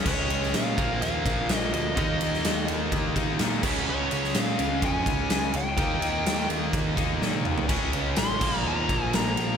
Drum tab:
CC |x---------------|--------------x-|----------------|----------------|
RD |--x-x-x-x-x-x-x-|x-x-x-x-x-x-x---|--x-x-x-x-x-x-x-|x-x-x-x-x-x-----|
SD |---oo-------o---|---oo-------o---|---oo-------o---|----o-------o---|
T1 |----------------|----------------|----------------|-------------o--|
T2 |----------------|----------------|----------------|--------------o-|
FT |----------------|----------------|----------------|---------------o|
BD |o-----o---o-----|o-------o-o---o-|--------o-o-----|o-------o-o-----|

CC |x-----x---------|
RD |x-x-x-----x-x-x-|
SD |----o-------o---|
T1 |----------------|
T2 |----------------|
FT |----------------|
BD |o-----o---o-----|